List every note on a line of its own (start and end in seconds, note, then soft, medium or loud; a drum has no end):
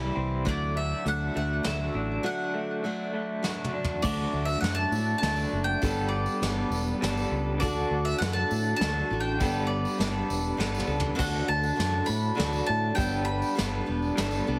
0.00 0.16 C3 medium
0.00 0.45 E3 medium
0.00 0.45 G3 medium
0.00 0.46 E4 medium
0.00 0.46 G4 medium
0.15 0.46 C2 medium
0.15 0.45 C4 medium
0.45 0.93 D2 medium
0.45 2.23 D3 medium
0.45 1.05 F#3 medium
0.45 1.06 A3 medium
0.45 1.07 D4 medium
0.45 1.07 F#4 medium
0.45 0.78 D5 medium
0.45 kick medium
0.45 closed hi-hat medium
0.76 1.35 A3 medium
0.76 1.07 E5 medium
1.05 1.28 D2 medium
1.05 2.23 D3 medium
1.05 1.35 F#3 medium
1.05 1.35 A3 medium
1.05 1.35 D4 medium
1.05 1.33 F#4 medium
1.05 1.36 F#5 loud
1.05 closed hi-hat medium
1.34 1.59 D2 medium
1.34 1.64 A3 soft
1.34 1.64 D4 soft
1.34 1.64 F#4 soft
1.34 1.67 F#5 medium
1.63 1.89 D2 medium
1.63 2.23 F#3 medium
1.63 2.23 A3 medium
1.63 2.24 D4 medium
1.63 2.24 F#4 medium
1.63 2.21 E5 medium
1.63 snare medium
1.63 closed hi-hat medium
1.94 2.18 A1 medium
1.94 3.44 D4 medium
2.23 2.83 D3 medium
2.23 2.83 F#3 medium
2.23 2.83 A3 medium
2.23 2.84 D4 medium
2.23 2.84 F#4 medium
2.23 3.41 F#5 medium
2.54 3.12 A3 medium
2.83 4.01 D3 medium
2.83 3.41 F#3 medium
2.83 3.43 A3 medium
2.83 3.44 D4 medium
2.83 3.45 F#4 medium
3.13 4.02 A3 medium
3.43 4.03 F#3 medium
3.43 4.04 A3 medium
3.43 4.04 D4 medium
3.43 4.04 F#4 medium
3.43 snare medium
3.64 mid tom medium
3.73 4.02 D4 medium
3.84 floor tom medium
4.02 4.25 D2 medium
4.02 4.63 D3 medium
4.02 4.61 F#3 medium
4.02 5.81 A3 medium
4.02 4.63 A3 medium
4.02 5.80 D4 medium
4.02 4.63 D4 medium
4.02 5.81 F#4 medium
4.02 4.63 F#4 medium
4.02 5.81 A4 medium
4.02 4.49 D5 medium
4.02 kick loud
4.02 crash loud
4.02 tambourine loud
4.33 4.55 D2 medium
4.45 4.60 E5 loud
4.45 tambourine medium
4.61 4.84 F#2 medium
4.61 4.92 F#3 medium
4.61 4.93 A3 medium
4.61 4.93 D4 medium
4.61 4.93 F#4 medium
4.61 4.74 F#5 loud
4.61 snare medium
4.61 closed hi-hat medium
4.75 5.17 A5 loud
4.91 5.14 A2 medium
4.91 5.24 F#4 soft
4.91 tambourine medium
4.97 5.25 A3 soft
4.97 5.25 D4 soft
5.07 tambourine soft
5.18 5.44 D2 medium
5.18 5.80 D3 medium
5.18 5.62 A5 loud
5.23 5.82 F#3 medium
5.23 5.81 A3 medium
5.23 5.82 D4 medium
5.23 snare medium
5.23 closed hi-hat medium
5.27 5.83 F#4 medium
5.36 tambourine medium
5.53 5.74 F#1 medium
5.64 6.12 G5 medium
5.82 6.26 G1 medium
5.82 6.41 G3 medium
5.82 6.42 B3 medium
5.82 7.60 B3 medium
5.82 6.42 D4 medium
5.82 7.59 D4 medium
5.82 7.60 G4 medium
5.82 6.43 A4 medium
5.82 7.58 A4 medium
5.82 kick loud
5.82 closed hi-hat medium
5.82 tambourine medium
6.09 7.26 D5 medium
6.26 tambourine medium
6.41 6.63 G1 medium
6.41 7.01 G3 medium
6.41 7.02 B3 medium
6.41 7.02 D4 medium
6.41 7.03 A4 medium
6.41 snare medium
6.41 closed hi-hat medium
6.70 6.92 E1 medium
6.70 tambourine medium
6.88 tambourine soft
7.02 7.24 G1 medium
7.02 7.61 G3 medium
7.02 7.62 B3 medium
7.02 7.63 D4 medium
7.02 7.63 A4 medium
7.02 snare medium
7.02 closed hi-hat medium
7.17 tambourine medium
7.31 7.63 C#2 medium
7.58 8.77 D3 medium
7.58 9.38 A3 medium
7.58 9.37 D4 medium
7.58 9.38 F#4 medium
7.58 9.37 A4 medium
7.58 8.07 D5 medium
7.58 closed hi-hat medium
7.58 tambourine medium
7.62 7.84 D2 loud
7.62 8.21 D3 medium
7.62 8.22 D4 medium
7.62 8.22 F#4 medium
7.62 8.24 A4 medium
7.62 kick loud
7.91 8.12 D2 medium
8.05 8.18 E5 medium
8.05 tambourine medium
8.18 8.42 F#2 medium
8.18 8.81 D3 medium
8.18 8.33 F#5 loud
8.18 snare medium
8.18 closed hi-hat medium
8.23 8.82 D4 medium
8.23 8.82 F#4 medium
8.23 8.84 A4 medium
8.33 8.75 A5 loud
8.51 8.73 A2 medium
8.51 tambourine medium
8.67 tambourine soft
8.76 9.02 D2 medium
8.76 9.20 A5 loud
8.81 9.11 D3 medium
8.81 9.11 D4 medium
8.81 9.11 F#4 medium
8.81 9.09 A4 medium
8.81 snare medium
8.81 closed hi-hat medium
9.10 9.43 A1 medium
9.10 9.40 D4 soft
9.10 9.41 F#4 soft
9.10 9.40 A4 soft
9.20 9.69 G5 medium
9.40 9.84 G1 loud
9.40 9.97 G3 medium
9.40 11.17 B3 medium
9.40 9.98 B3 medium
9.40 11.16 D4 medium
9.40 9.98 D4 medium
9.40 11.17 G4 medium
9.40 11.16 A4 medium
9.40 10.00 A4 medium
9.40 kick loud
9.40 closed hi-hat medium
9.40 tambourine loud
9.67 10.83 D5 medium
9.85 tambourine medium
9.98 10.21 G1 medium
9.98 10.56 G3 medium
9.98 10.58 B3 medium
9.98 10.58 D4 medium
9.98 10.59 A4 medium
9.98 snare medium
9.98 closed hi-hat medium
10.30 10.51 E1 medium
10.30 tambourine medium
10.57 10.80 G1 medium
10.57 10.88 G3 medium
10.57 10.86 B3 medium
10.57 10.88 D4 medium
10.57 10.86 A4 medium
10.57 snare medium
10.57 tambourine soft
10.74 tambourine medium
10.80 mid tom medium
10.87 11.10 C#2 medium
10.87 11.15 B3 soft
10.87 11.14 D4 soft
10.87 11.15 A4 soft
11.00 floor tom loud
11.15 11.74 D3 medium
11.15 12.95 A3 medium
11.15 11.76 D4 medium
11.15 12.95 D4 medium
11.15 11.76 F#4 medium
11.15 12.95 F#4 medium
11.15 11.77 A4 medium
11.15 12.95 A4 medium
11.15 11.48 F#5 medium
11.15 tambourine loud
11.19 11.41 D2 medium
11.19 kick loud
11.19 crash medium
11.48 11.70 D2 medium
11.48 12.06 A5 loud
11.63 tambourine medium
11.75 12.00 F#2 medium
11.75 12.07 D3 medium
11.75 12.05 D4 medium
11.75 12.05 F#4 medium
11.75 12.03 A4 medium
11.80 snare medium
11.80 closed hi-hat medium
12.05 12.36 D4 soft
12.05 12.36 F#4 soft
12.05 12.36 A4 soft
12.05 12.63 B5 loud
12.05 tambourine medium
12.09 12.30 A2 medium
12.23 tambourine soft
12.35 12.60 D2 medium
12.35 12.94 D3 medium
12.35 12.95 D4 medium
12.35 12.95 F#4 medium
12.35 12.95 A4 medium
12.39 snare medium
12.39 closed hi-hat medium
12.53 tambourine medium
12.66 12.90 A2 medium
12.66 12.95 A5 loud
12.95 13.41 G1 loud
12.95 13.54 G3 medium
12.95 13.56 B3 medium
12.95 14.59 B3 medium
12.95 13.56 D4 medium
12.95 14.59 D4 medium
12.95 14.59 G4 medium
12.95 13.58 A4 medium
12.95 14.59 A4 medium
12.95 13.24 G5 loud
12.95 kick loud
12.95 tambourine loud
12.99 closed hi-hat medium
13.25 14.41 B5 loud
13.42 tambourine medium
13.55 13.80 G1 medium
13.55 13.86 G3 medium
13.55 13.85 B3 medium
13.55 13.86 D4 medium
13.55 13.85 A4 medium
13.55 snare medium
13.55 closed hi-hat medium
13.86 14.10 E1 medium
13.86 14.16 B3 soft
13.86 14.16 D4 soft
13.86 14.16 A4 soft
14.02 tambourine soft
14.17 14.39 G1 medium
14.17 14.47 G3 medium
14.17 14.46 B3 medium
14.17 14.47 D4 medium
14.17 14.46 A4 medium
14.17 snare medium
14.17 closed hi-hat medium
14.31 tambourine medium
14.47 14.59 C2 medium
14.47 14.59 B3 medium
14.47 14.59 D4 soft
14.47 14.59 A4 medium